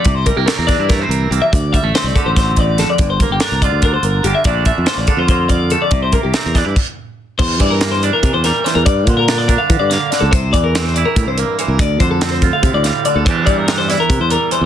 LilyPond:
<<
  \new Staff \with { instrumentName = "Clean electric guitar" } { \time 7/8 \key c \mixolydian \tempo 4 = 143 d''16 c''16 bes'16 g'16 bes'8 d''8 bes'16 c''16 bes'8 g'16 e''16 | d''8 e''8 c''16 d''16 a'16 c''16 c''8 d''8 a'16 d''16~ | d''16 c''16 bes'16 g'16 bes'8 d''8 bes'16 c''16 bes'8 g'16 e''16 | d''8 e''8 c''16 d''16 a'16 c''16 c''8 d''8 a'16 d''16~ |
d''16 c''16 bes'16 g'16 bes'8 d''8 r4. | c''8 d''16 bes'8 c''16 d''16 bes'8 c''16 bes'8 c''16 bes'16 | d''8 c''16 bes'8 d''16 bes'16 f''8 d''16 f''8 d''16 a'16 | c''8 d''16 bes'8 c''16 d''16 bes'8 c''16 bes'8 c''16 bes'16 |
d''8 c''16 a'8 c''16 a'16 f''8 d''16 f''8 d''16 a'16 | c''8 d''16 bes'8 c''16 d''16 bes'8 c''16 bes'8 c''16 r16 | }
  \new Staff \with { instrumentName = "Clean electric guitar" } { \clef bass \time 7/8 \key c \mixolydian << { r8 g16 bes16 a16 c'16 d'16 e'16 a16 c'8. bes8 | r8 g16 a16 c'8 g'2 | r8 bes8 d'8 f'8 d'4 bes8 | <d a bes d'>8 a8 bes8 d'16 f'16 bes4 a8 |
r8 bes8 c'8 d'16 e'16 r4. | r4 bes8 d'4 g4~ | g4 d'8 d'4 bes4 | r4 c'8 e'4 bes4 |
r4 c'8 f'4 g4 | <e g d' g'>4 d'8 e'4 g4 | } \\ { c4. e4. c8 | d,4. d8 d,8 e,8 f,8 | g,4. d4. d8 | bes,4. d4. f,8 |
c4. e8 r4. | e,8 e4. bes,4 e8 | g,8 d4. d4 d8 | c8 e4. g,4 e8 |
d,8 d4. a,4 d8 | e,8 e4. e,4 e8 | } >> }
  \new Staff \with { instrumentName = "Fingered electric bass" } { \clef bass \time 7/8 \key c \mixolydian c,8. c,16 r16 e,8 g,8. c,8 c,16 r16 | d,8. a,,16 r16 c,16 r16 a,,4.~ a,,16 | g,,8. g,,16 r16 c,8 d,8. g,,8 g,,16 r16 | bes,,8. f,16 r16 a,,16 r16 f,4.~ f,16 |
c,8. c,16 r16 e,8 g,16 r4. | e,8 g,4. c16 e,8 r8 e,16 | g,8 bes,4. e16 g,8 r8 cis,16 | c,8 e,4. a,16 c,8 r8 c,16 |
d,8 f,4. c16 d,8 r8 d,16 | e,8 g,4. c16 e,8 r8 e,16 | }
  \new DrumStaff \with { instrumentName = "Drums" } \drummode { \time 7/8 <hh bd>8 <hh bd>8 <hh sn>8 <hh bd sn>8 <hh bd sn>8 hh8 hh8 | <hh bd>8 <hh bd>8 <hh sn>8 <hh bd>8 <hh bd sn>8 <hh bd>8 <hh sn>8 | <hh bd>8 <hh bd>8 <hh sn>8 <hh bd>8 <hh bd>8 hh8 hh8 | <hh bd>8 <hh bd>8 <hh sn>8 <hh bd>8 <hh bd>8 <hh bd>8 hh8 |
<hh bd>8 <hh bd>8 <hh sn>8 <hh bd sn>8 <cymc bd>4. | <cymc bd>8 <hh bd>8 <hh sn>8 hh8 <hh bd>8 <hh sn>8 <hh sn>8 | <hh bd>8 <hh bd>8 <hh sn>8 <hh bd>8 <hh bd>8 <hh sn>8 <hh sn>8 | <hh bd>8 <hh bd>8 <hh sn>8 hh8 <hh bd>8 hh8 hh8 |
<hh bd>8 <hh bd>8 <hh sn>8 <hh bd>8 <hh bd>8 <hh sn>8 hh8 | <hh bd>8 <hh bd>8 <hh sn>8 <hh sn>8 <hh bd>8 hh8 hh8 | }
>>